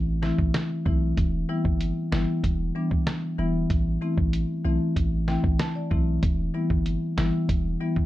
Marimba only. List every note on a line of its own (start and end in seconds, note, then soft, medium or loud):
0.22 0.35 E3 medium
0.22 0.35 A3 medium
0.22 0.35 C4 medium
0.22 0.36 E4 medium
0.86 0.98 E3 medium
0.86 0.98 A3 medium
0.86 0.99 C4 medium
0.86 0.99 E4 loud
1.49 1.62 E3 medium
1.49 1.62 G3 medium
1.49 1.62 B3 medium
1.49 1.62 E4 loud
2.12 2.25 E3 medium
2.12 2.25 G3 medium
2.12 2.25 B3 medium
2.12 2.25 E4 loud
2.75 2.88 E3 medium
2.75 2.88 G3 medium
2.75 2.88 B3 medium
2.75 2.88 D4 medium
3.38 3.51 E3 medium
3.38 3.51 G3 medium
3.38 3.51 B3 medium
3.38 3.51 E4 loud
4.01 4.14 E3 medium
4.01 4.14 A3 medium
4.01 4.14 C4 medium
4.01 4.14 E4 loud
4.65 4.77 E3 medium
4.65 4.77 A3 medium
4.65 4.78 C4 medium
4.65 4.78 E4 loud
5.28 5.41 E3 medium
5.28 5.41 A3 medium
5.28 5.41 C4 medium
5.28 5.41 E4 medium
5.28 5.57 G5 medium
5.60 5.74 A5 medium
5.75 6.19 D5 medium
5.91 6.04 E3 medium
5.91 6.04 A3 medium
5.91 6.04 C4 medium
5.91 6.04 E4 medium
6.54 6.67 E3 medium
6.54 6.67 G3 medium
6.54 6.67 B3 medium
6.54 6.67 E4 loud
7.17 7.30 E3 medium
7.17 7.30 G3 medium
7.17 7.30 B3 medium
7.17 7.30 E4 loud
7.80 7.93 E3 medium
7.80 7.93 G3 medium
7.80 7.93 B3 medium
7.80 7.93 E4 medium